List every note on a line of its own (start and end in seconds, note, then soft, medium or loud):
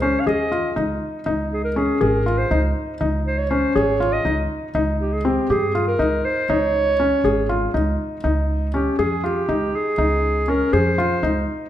0.00 0.15 C#2 medium
0.00 0.23 C#4 medium
0.00 0.22 C5 medium
0.20 0.28 F5 medium
0.27 0.68 D#2 medium
0.27 0.48 G#4 medium
0.27 0.77 D#5 medium
0.52 0.73 F4 medium
0.76 0.98 C#2 medium
0.76 1.19 D#4 medium
1.26 1.89 C#2 medium
1.26 1.69 D#4 medium
1.53 1.64 G#4 medium
1.64 1.79 A#4 medium
1.76 1.98 C#4 medium
1.76 2.03 G#4 medium
2.01 2.43 G#1 medium
2.01 2.22 G#4 medium
2.01 2.40 A#4 medium
2.26 2.47 F4 medium
2.38 2.63 C5 medium
2.51 2.72 C#2 medium
2.51 2.93 D#4 medium
3.01 3.63 C#2 medium
3.01 3.43 D#4 medium
3.27 3.40 C5 medium
3.38 3.52 C#5 medium
3.50 3.72 C#4 medium
3.50 3.77 C5 medium
3.75 4.17 G#1 medium
3.75 3.97 G#4 medium
3.75 4.14 C#5 medium
4.00 4.22 F4 medium
4.13 4.38 D#5 medium
4.25 4.46 C#2 medium
4.25 4.68 D#4 medium
4.75 5.37 C#2 medium
4.75 5.17 D#4 medium
5.01 5.15 G4 medium
5.13 5.27 G#4 medium
5.25 5.46 C4 medium
5.25 5.50 G4 medium
5.50 5.91 G2 medium
5.50 5.71 G4 medium
5.50 5.85 G#4 medium
5.75 5.96 F4 medium
5.88 6.26 A#4 medium
5.99 6.20 C#2 medium
5.99 6.42 D#4 medium
6.25 6.51 C5 medium
6.49 7.12 C#2 medium
6.49 6.92 D#4 medium
6.49 7.74 C#5 medium
7.00 7.21 C#4 medium
7.24 7.66 G#1 medium
7.24 7.46 G#4 medium
7.49 7.71 F4 medium
7.74 7.95 C#2 medium
7.74 8.16 D#4 medium
8.24 8.86 C#2 medium
8.24 8.66 D#4 medium
8.74 8.95 C#4 medium
8.74 8.98 G4 medium
8.98 9.40 F2 medium
8.98 9.27 G#4 medium
8.98 9.20 G#4 medium
9.24 9.45 F4 medium
9.24 9.77 G4 medium
9.49 9.69 C#2 medium
9.49 9.91 D#4 medium
9.76 10.51 G#4 medium
9.98 10.60 C#2 medium
9.98 10.41 D#4 medium
10.48 10.69 C#4 medium
10.48 10.75 A#4 medium
10.73 11.15 F2 medium
10.73 10.94 G#4 medium
10.73 11.48 C5 medium
10.98 11.19 F4 medium
11.23 11.43 C#2 medium
11.23 11.65 D#4 medium